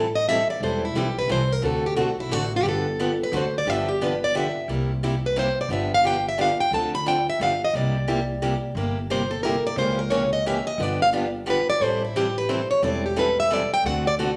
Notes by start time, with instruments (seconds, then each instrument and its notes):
Already playing: upright bass A1
0.15 steel-string acoustic guitar D#5
0.29 steel-string acoustic guitar E3 G3 C4 E4 A4 E5
0.50 steel-string acoustic guitar D5
0.60 upright bass E1, steel-string acoustic guitar E3 G3 C4 E4 A4 C5
0.85 steel-string acoustic guitar E4
0.94 upright bass B1, steel-string acoustic guitar E3 G3 C4 E4 G4 A4
1.19 steel-string acoustic guitar B4
1.28 upright bass C2, steel-string acoustic guitar E3 G3 C4 E4 A4
1.32 steel-string acoustic guitar C5
1.52 steel-string acoustic guitar A#4
1.62 upright bass D2, steel-string acoustic guitar D3 A3 C4 F#4 A4
1.86 steel-string acoustic guitar G4
1.95 upright bass B1, steel-string acoustic guitar D3 A3 C4 F#4 A4
2.20 steel-string acoustic guitar E4
2.29 upright bass A1, steel-string acoustic guitar D3 A3 C4 F#4 A4
2.56 steel-string acoustic guitar G4
2.62 upright bass G1, steel-string acoustic guitar D3 F3 B3 D4 G4
2.69 steel-string acoustic guitar A4
2.99 steel-string acoustic guitar D3 F3 B3 D4 G4
3.23 steel-string acoustic guitar B4
3.32 upright bass D2, steel-string acoustic guitar D3 A3 C4 F#4 A4
3.37 steel-string acoustic guitar C5
3.58 steel-string acoustic guitar D5
3.65 upright bass G1, steel-string acoustic guitar D3 F3 B3 D4 G4
3.70 steel-string acoustic guitar E5
3.88 steel-string acoustic guitar G4
4.01 steel-string acoustic guitar D3 F3 B3 D4 G4 B4
4.24 steel-string acoustic guitar D5
4.35 steel-string acoustic guitar D3 F3 B3 D4 G4 E5
4.68 upright bass C2, steel-string acoustic guitar C3 G3 A#3 E4 G4
5.03 steel-string acoustic guitar C3 G3 A#3 E4 G4
5.26 steel-string acoustic guitar B4
5.36 steel-string acoustic guitar C3 G3 A#3 E4 G4 C5
5.61 steel-string acoustic guitar D5
5.68 upright bass G1, steel-string acoustic guitar D3 F3 B3 D4 G4
5.72 steel-string acoustic guitar E5
5.94 steel-string acoustic guitar F5
6.04 steel-string acoustic guitar D3 F3 B3 D4 G4 G5
6.28 steel-string acoustic guitar E5
6.38 steel-string acoustic guitar D3 F3 B3 D4 G4 F5
6.60 steel-string acoustic guitar G5
6.71 upright bass D2, steel-string acoustic guitar D3 F3 C4 D4 A4 A5
6.95 steel-string acoustic guitar B5
7.06 steel-string acoustic guitar D3 F3 C4 D4 A4 G5
7.30 steel-string acoustic guitar E5
7.40 upright bass G1, steel-string acoustic guitar D3 F3 B3 D4 G4 F5
7.64 steel-string acoustic guitar D#5
7.73 upright bass C2, steel-string acoustic guitar C3 G3 A#3 E4 G4 D5
8.08 steel-string acoustic guitar C3 G3 A#3 E4 G4
8.42 steel-string acoustic guitar C3 G3 A#3 E4 G4
8.75 upright bass G1, steel-string acoustic guitar C3 G3 A#3 E4 G4
9.10 steel-string acoustic guitar C3 G3 A#3 E4 G4 C5
9.31 steel-string acoustic guitar A4
9.43 steel-string acoustic guitar C3 G3 A#3 E4 G4 A#4
9.67 steel-string acoustic guitar D5
9.76 upright bass C#2, steel-string acoustic guitar C#3 E3 A#3 C#4 G4 C5
9.99 steel-string acoustic guitar A#4
10.10 steel-string acoustic guitar C#3 E3 A#3 C#4 G4 C#5
10.33 steel-string acoustic guitar D#5
10.46 steel-string acoustic guitar C#3 E3 A#3 C#4 G4 E5
10.67 steel-string acoustic guitar D#5
10.78 upright bass G1, steel-string acoustic guitar D3 F3 B3 D4 G4
10.83 steel-string acoustic guitar D5
11.02 steel-string acoustic guitar F5
11.13 steel-string acoustic guitar D3 F3 B3 D4 G4
11.46 steel-string acoustic guitar D3 F3 B3 D4 G4
11.50 steel-string acoustic guitar B4
11.70 steel-string acoustic guitar D5
11.80 upright bass A1, steel-string acoustic guitar E3 G3 C4 E4 A4 C5
12.05 steel-string acoustic guitar E4
12.16 steel-string acoustic guitar E3 G3 C4 E4 G4 A4
12.38 steel-string acoustic guitar B4
12.49 steel-string acoustic guitar E3 G3 C4 E4 A4 C5
12.71 steel-string acoustic guitar C#5
12.82 upright bass E1, steel-string acoustic guitar E3 G3 C4 E4 A4 D5
13.06 steel-string acoustic guitar G4
13.16 steel-string acoustic guitar E3 G3 C4 E4 A4 B4
13.40 steel-string acoustic guitar E5
13.51 steel-string acoustic guitar E3 G3 C4 E4 A4 D5
13.74 steel-string acoustic guitar G5
13.84 upright bass D2, steel-string acoustic guitar D3 A3 C4 F#4 A4 F#5
14.07 steel-string acoustic guitar D5
14.19 steel-string acoustic guitar D3 A3 C4 F#4 A4